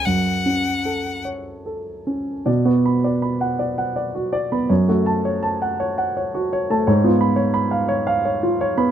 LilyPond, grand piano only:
<<
  \new Staff \with { instrumentName = "Grand piano" } { \time 6/8 \key fis \minor \tempo 4. = 54 r2. | d''16 fis'16 b''16 d''16 b''16 fis''16 d''16 fis''16 d''16 fis'16 d''16 b''16 | cis''16 fis'16 a''16 cis''16 a''16 fis''16 cis''16 fis''16 cis''16 fis'16 cis''16 a''16 | cis''16 eis'16 b''16 cis''16 b''16 eis''16 cis''16 eis''16 cis''16 eis'16 cis''16 b''16 | }
  \new Staff \with { instrumentName = "Grand piano" } { \time 6/8 \key fis \minor fis,8 cis'8 a'8 cis''8 a'8 cis'8 | b,16 b8 r2 b16 | fis,16 a8 r2 a16 | gis,16 b8 r2 b16 | }
>>